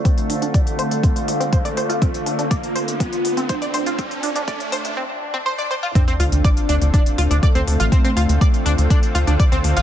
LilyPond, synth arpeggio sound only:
\new Staff \with { instrumentName = "Synth arpeggio sound" } { \time 4/4 \key d \minor \tempo 4 = 122 c'16 r16 d'16 d'16 d''16 r16 c''16 r16 c'16 r8 c'16 c''16 d''16 c''16 f'16 | c'16 r16 d'16 d'16 d''16 r16 c''16 r16 c'16 r8 c'16 c''16 d''16 c''16 f'16 | c'16 r16 d'16 d'16 d''16 r16 c''16 r16 c'16 r8 c'16 c''16 d''16 c''16 f'16 | <c' c''>16 <c' c''>16 <f' f''>16 r16 <d'' d'''>16 r16 <d' d''>16 r16 <d' d''>16 r16 <f' f''>16 <d' d''>16 <d'' d'''>16 <c' c''>16 r16 <f' f''>16 |
<c' c''>16 <c' c''>16 <f' f''>16 r16 <d'' d'''>16 r16 <d' d''>16 r16 <d' d''>16 r16 <f' f''>16 <d' d''>16 <d'' d'''>16 <c' c''>16 r16 <f' f''>16 | }